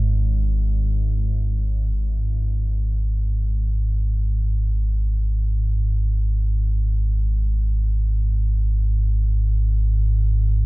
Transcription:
0.00 1.93 G#1 medium
0.00 1.95 G#2 medium
0.00 1.95 G#3 medium
0.00 1.94 C#4 medium
0.00 1.95 G#4 medium
0.00 1.94 C#5 medium
0.00 1.93 E5 medium
1.94 10.66 G#1 medium
1.94 10.66 G#2 medium

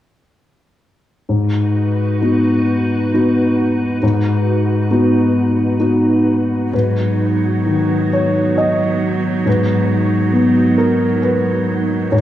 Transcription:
1.28 2.19 G#2 soft
1.28 6.69 D#4 soft
1.28 6.69 F#4 medium
1.28 6.69 B4 soft
2.21 3.09 B3 soft
2.21 3.09 D#4 soft
2.21 3.10 F#4 soft
3.14 3.98 B3 soft
3.14 3.99 D#4 soft
3.14 3.99 F#4 soft
4.03 4.87 G#2 soft
4.91 5.76 B3 soft
4.91 5.76 D#4 soft
4.91 5.76 F#4 soft
5.80 6.69 B3 soft
5.80 6.69 D#4 soft
5.80 6.70 F#4 soft
6.72 9.42 G#2 soft
6.72 12.13 F#3 soft
6.72 12.09 B3 medium
6.72 12.09 D#4 medium
6.72 12.08 F#4 medium
6.72 8.09 B4 soft
7.66 10.52 D#3 soft
8.13 8.55 C#5 soft
8.58 9.42 D#5 soft
9.46 12.08 G#2 soft
9.46 10.75 B4 soft
10.33 12.12 B3 soft
10.78 11.20 A#4 soft
11.22 12.08 B4 medium
12.12 12.21 G#2 soft
12.12 12.21 E3 soft
12.12 12.21 B3 soft
12.12 12.21 E4 soft
12.12 12.21 B4 medium
12.12 12.21 C#5 medium

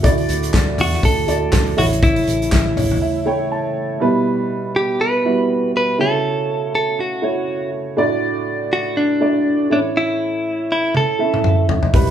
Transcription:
0.00 0.74 A2 medium
0.00 1.76 D3 medium
0.00 1.74 F#3 medium
0.00 0.88 A3 medium
0.00 3.97 A3 medium
0.00 1.76 F#4 medium
0.00 0.88 F#4 medium
0.00 open hi-hat medium
0.04 0.25 D2 loud
0.04 0.88 D5 loud
0.04 kick loud
0.04 hi-hat pedal medium
0.18 open hi-hat medium
0.29 0.49 D2 medium
0.29 hi-hat pedal medium
0.29 open hi-hat medium
0.43 hi-hat pedal medium
0.54 0.78 D2 loud
0.54 kick loud
0.54 snare loud
0.54 clap medium
0.54 hi-hat pedal medium
0.54 open hi-hat medium
0.78 0.99 E2 medium
0.78 1.05 F#4 loud
0.78 floor tom medium
0.78 hi-hat pedal medium
0.78 open hi-hat medium
0.92 snare soft
1.03 1.24 D2 loud
1.03 1.75 A4 loud
1.03 kick loud
1.03 hi-hat pedal medium
1.03 open hi-hat medium
1.27 1.48 D2 medium
1.27 1.75 A3 medium
1.27 1.78 F#4 medium
1.27 1.78 D5 medium
1.27 hi-hat pedal medium
1.27 open hi-hat medium
1.53 1.73 D2 loud
1.53 kick loud
1.53 snare loud
1.53 clap medium
1.53 hi-hat pedal medium
1.53 open hi-hat medium
1.67 open hi-hat soft
1.77 2.18 A1 loud
1.77 2.48 A2 medium
1.77 3.99 C#3 medium
1.77 2.48 E3 medium
1.77 3.99 E3 medium
1.77 2.61 A3 medium
1.77 2.62 E4 medium
1.77 3.99 E4 medium
1.77 1.85 F#4 medium
1.77 2.62 C#5 medium
1.77 floor tom medium
1.77 hi-hat pedal medium
1.77 open hi-hat medium
1.92 hi-hat pedal medium
2.02 3.48 E4 medium
2.02 kick loud
2.02 hi-hat pedal medium
2.02 open hi-hat medium
2.16 open hi-hat medium
2.27 2.48 A1 medium
2.27 hi-hat pedal medium
2.27 open hi-hat medium
2.42 hi-hat pedal medium
2.52 2.73 A1 loud
2.52 kick loud
2.52 snare loud
2.52 clap medium
2.52 hi-hat pedal medium
2.52 open hi-hat medium
2.77 2.97 A1 medium
2.77 3.00 C#5 medium
2.77 floor tom medium
2.77 hi-hat pedal medium
2.77 open hi-hat medium
2.91 floor tom medium
3.02 3.25 E5 medium
3.26 3.90 A3 medium
3.26 3.90 E4 medium
3.26 3.90 C#5 medium
3.26 3.50 G5 medium
3.52 3.98 A5 medium
4.00 4.71 B2 medium
4.00 4.85 G3 medium
4.00 4.85 B3 medium
4.00 4.85 E4 medium
4.00 4.85 B4 medium
4.76 5.01 G4 medium
5.01 5.71 B4 loud
5.24 5.88 G3 medium
5.24 5.89 B3 medium
5.24 5.89 E4 medium
5.24 5.89 F#4 medium
5.77 6.00 B4 loud
5.98 6.69 C#3 medium
5.98 6.83 A3 medium
5.98 6.83 E4 medium
5.98 6.84 F#4 medium
5.98 6.74 A4 loud
5.98 6.84 C#5 medium
6.75 7.00 A4 medium
7.00 7.70 F#4 medium
7.22 7.86 A3 medium
7.22 7.87 E4 medium
7.22 7.87 F#4 medium
7.22 7.87 C#5 medium
7.97 8.68 A2 medium
7.97 8.81 A3 medium
7.97 8.82 D4 medium
7.97 8.82 F#4 medium
7.97 8.82 D5 loud
8.73 8.95 F#4 medium
8.97 9.67 D4 medium
9.21 9.69 A3 medium
9.21 9.71 D4 medium
9.21 9.71 F#4 medium
9.21 9.71 D5 medium
9.70 10.41 A2 medium
9.70 10.41 E3 medium
9.70 10.55 A3 medium
9.70 10.55 C#4 medium
9.70 9.79 D4 medium
9.70 10.55 E4 medium
9.70 10.55 C#5 medium
9.97 10.71 E4 loud
10.72 10.96 E4 medium
10.95 11.66 A4 loud
10.95 high tom medium
11.19 11.83 A3 medium
11.19 11.83 C#4 medium
11.19 11.84 E4 medium
11.19 11.84 E5 medium
11.34 mid tom medium
11.44 mid tom medium
11.69 floor tom loud
11.83 floor tom medium
11.93 12.11 E1 loud
11.93 12.11 B2 medium
11.93 12.11 E3 medium
11.93 12.11 G3 medium
11.93 12.11 B3 medium
11.93 12.11 E4 medium
11.93 12.11 G4 medium
11.93 12.11 B4 loud
11.93 kick loud
11.93 open hi-hat medium
12.07 open hi-hat medium

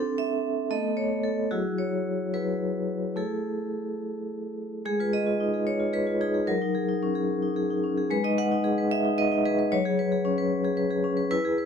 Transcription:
0.00 0.69 C4 medium
0.00 0.69 D4 medium
0.00 0.18 A4 medium
0.18 0.72 E5 medium
0.71 1.49 A3 medium
0.71 1.49 B3 medium
0.71 1.22 A4 medium
0.71 0.98 D#5 medium
0.97 1.24 C#5 medium
1.23 1.51 A4 medium
1.51 2.31 F#3 medium
1.51 2.31 E4 medium
1.51 1.79 F#4 medium
1.51 2.31 G#4 medium
1.78 2.33 C#5 medium
2.33 3.14 F#3 medium
2.33 3.15 E4 soft
2.33 3.15 G#4 soft
2.33 3.17 B4 medium
3.16 4.81 A3 medium
3.16 4.81 E4 soft
3.16 4.81 G#4 soft
3.16 4.01 A4 medium
4.85 6.44 G#3 medium
4.85 4.99 G#4 medium
5.00 5.21 F4 soft
5.00 5.13 B4 medium
5.13 5.35 G#4 medium
5.13 5.67 D#5 medium
5.27 5.48 F4 soft
5.40 5.62 D#4 soft
5.54 5.92 G#4 soft
5.67 5.94 C#5 medium
5.80 6.01 F4 soft
5.93 6.15 G#4 medium
5.93 6.21 B4 medium
6.07 6.29 F4 medium
6.21 6.43 D#4 medium
6.21 6.33 G#4 medium
6.34 6.48 G#4 medium
6.47 8.06 F#3 medium
6.47 7.83 A#4 medium
6.62 6.83 D#4 medium
6.75 6.96 G#4 medium
6.89 7.10 D#4 medium
7.03 7.24 C#4 medium
7.15 7.55 G#4 medium
7.42 7.64 D#4 soft
7.56 7.78 G#4 medium
7.71 7.92 D#4 medium
7.83 8.05 C#4 medium
7.97 8.11 G#4 medium
8.10 9.68 G#3 medium
8.10 8.24 B4 loud
8.24 8.45 D#4 medium
8.24 8.38 D#5 medium
8.38 8.59 B4 medium
8.38 8.91 F#5 loud
8.52 8.72 D#4 medium
8.64 8.85 G#4 medium
8.78 9.17 B4 medium
8.91 9.18 E5 loud
9.05 9.26 D#4 medium
9.18 9.40 B4 medium
9.18 9.45 D#5 medium
9.31 9.53 D#4 medium
9.45 9.67 G#4 medium
9.45 9.58 B4 loud
9.59 9.72 B4 medium
9.72 11.27 F#3 medium
9.72 11.04 C#5 loud
9.85 10.07 G#4 medium
9.99 10.20 B4 medium
10.12 10.33 G#4 medium
10.25 10.46 C#4 medium
10.38 10.76 B4 medium
10.65 10.86 G#4 medium
10.77 10.99 B4 medium
10.91 11.12 G#4 medium
11.04 11.26 C#4 medium
11.17 11.30 B4 medium
11.31 11.65 E4 loud
11.31 11.57 B4 loud
11.45 11.65 G#4 medium
11.58 11.65 B4 medium

